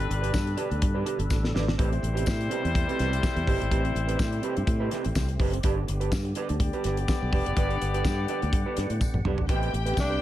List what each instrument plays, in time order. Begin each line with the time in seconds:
Already playing: tonewheel organ B2 D3 G3 A4, horn section G3 D4 B4
0.09 fingered electric bass G1, muted clean electric guitar stroke, closed hi-hat
0.22 clean electric guitar D4 G4 B4, closed hi-hat
0.33 fingered electric bass G2, muted clean electric guitar stroke, kick, snare, tambourine
0.46 muted clean electric guitar stroke, closed hi-hat
0.57 clean electric guitar D4 G4 B4, closed hi-hat
0.70 fingered electric bass D2, muted clean electric guitar stroke, closed hi-hat
0.82 fingered electric bass G2, muted clean electric guitar stroke, kick, closed hi-hat
0.94 clean electric guitar D4 G4 B4
1.06 clean electric guitar D4 G4 B4, closed hi-hat
1.19 fingered electric bass G1, muted clean electric guitar stroke, closed hi-hat
1.30 fingered electric bass A1, muted clean electric guitar stroke, kick, snare, tambourine
1.43 muted clean electric guitar stroke, snare
1.54 fingered electric bass G#1, clean electric guitar D4 G4 B4, snare
1.68 muted clean electric guitar stroke, snare
1.78 fingered electric bass A1, tonewheel organ C3 A3 G4, horn section G3 E4 C5, clean electric guitar C4 G4 B4, kick, closed hi-hat
1.91 muted clean electric guitar stroke, closed hi-hat
2.02 fingered electric bass A1, muted clean electric guitar stroke, closed hi-hat
2.14 clean electric guitar C4 G4 B4, closed hi-hat
2.25 fingered electric bass A2, muted clean electric guitar stroke, kick, snare, tambourine
2.39 muted clean electric guitar stroke, closed hi-hat
2.50 clean electric guitar C4 G4 B4, closed hi-hat
2.63 fingered electric bass E2, muted clean electric guitar stroke, closed hi-hat
2.75 muted clean electric guitar stroke, kick, closed hi-hat
2.88 clean electric guitar C4 G4 B4, closed hi-hat
2.99 fingered electric bass C2, clean electric guitar C4 G4 B4, snare, closed hi-hat
3.12 muted clean electric guitar stroke, closed hi-hat
3.23 muted clean electric guitar stroke, kick, snare, tambourine
3.36 fingered electric bass E2, muted clean electric guitar stroke, closed hi-hat
3.47 fingered electric bass G1, clean electric guitar C4 G4 B4, kick, open hi-hat
3.60 fingered electric bass G#1, muted clean electric guitar stroke, closed hi-hat
3.71 fingered electric bass A1, clean electric guitar C4 G4 B4, tonewheel organ C4, kick, closed hi-hat
3.84 muted clean electric guitar stroke, closed hi-hat
3.95 fingered electric bass A1, muted clean electric guitar stroke, closed hi-hat
4.07 clean electric guitar C4 G4 B4, closed hi-hat
4.19 fingered electric bass A2, muted clean electric guitar stroke, kick, snare, tambourine
4.32 muted clean electric guitar stroke, closed hi-hat
4.42 clean electric guitar C4 G4 B4, closed hi-hat
4.56 fingered electric bass G2, muted clean electric guitar stroke, closed hi-hat
4.67 fingered electric bass A2, muted clean electric guitar stroke, kick, closed hi-hat
4.80 clean electric guitar C4 G4 B4
4.91 clean electric guitar C4 G4 B4, snare, closed hi-hat
5.04 fingered electric bass A1, muted clean electric guitar stroke, closed hi-hat
5.15 fingered electric bass C2, muted clean electric guitar stroke, kick, snare, tambourine
5.28 muted clean electric guitar stroke, closed hi-hat
5.39 fingered electric bass F#1, clean electric guitar C4 G4 B4, kick, open hi-hat
5.53 muted clean electric guitar stroke, closed hi-hat
5.63 fingered electric bass G1, tonewheel organ D3 G3 B3, clean electric guitar D4 G4 B4, kick, closed hi-hat
5.77 muted clean electric guitar stroke
5.87 fingered electric bass G1, muted clean electric guitar stroke, closed hi-hat
6.00 clean electric guitar D4 G4 B4, closed hi-hat
6.12 fingered electric bass G2, muted clean electric guitar stroke, kick, snare, tambourine
6.25 muted clean electric guitar stroke, closed hi-hat
6.35 clean electric guitar D4 G4 B4, closed hi-hat
6.49 fingered electric bass D2, muted clean electric guitar stroke, closed hi-hat
6.60 horn section B3 G4 D5, muted clean electric guitar stroke, kick, closed hi-hat
6.73 clean electric guitar D4 G4 B4, closed hi-hat
6.84 fingered electric bass G1, clean electric guitar D4 G4 B4, snare, closed hi-hat
6.97 muted clean electric guitar stroke, closed hi-hat
7.08 muted clean electric guitar stroke, kick, snare, tambourine
7.21 fingered electric bass B1, muted clean electric guitar stroke
7.33 fingered electric bass F1, clean electric guitar D4 G4 B4, kick, open hi-hat
7.46 fingered electric bass F#1, muted clean electric guitar stroke, closed hi-hat
7.56 fingered electric bass G1, clean electric guitar D4 G4 B4, tonewheel organ F#5, kick, closed hi-hat
7.70 muted clean electric guitar stroke, closed hi-hat
7.81 fingered electric bass G1, muted clean electric guitar stroke, closed hi-hat
7.94 clean electric guitar D4 G4 B4, closed hi-hat
8.05 fingered electric bass G2, muted clean electric guitar stroke, kick, snare, tambourine
8.18 muted clean electric guitar stroke
8.28 clean electric guitar D4 G4 B4, closed hi-hat
8.42 fingered electric bass D2, muted clean electric guitar stroke, closed hi-hat
8.53 fingered electric bass G2, muted clean electric guitar stroke, kick, closed hi-hat
8.66 clean electric guitar D4 G4 B4
8.77 fingered electric bass G2, clean electric guitar D4 G4 B4, snare, closed hi-hat
8.90 fingered electric bass A2, muted clean electric guitar stroke, closed hi-hat
9.01 muted clean electric guitar stroke, kick, high tom, tambourine
9.14 fingered electric bass A1, muted clean electric guitar stroke, mid tom
9.25 fingered electric bass B1, clean electric guitar D4 G4 B4, mid tom
9.38 fingered electric bass G#1, muted clean electric guitar stroke, floor tom
9.49 fingered electric bass A1, tonewheel organ C3 A3 B3 G4, clean electric guitar C4 G4 B4, string section G4 G5, kick, closed hi-hat
9.63 closed hi-hat
9.73 fingered electric bass A1, muted clean electric guitar stroke, closed hi-hat
9.86 clean electric guitar C4 G4 B4, closed hi-hat
9.97 fingered electric bass C2, tenor saxophone D4, muted clean electric guitar stroke, kick, snare, tambourine
10.10 clean electric guitar C4 G4 B4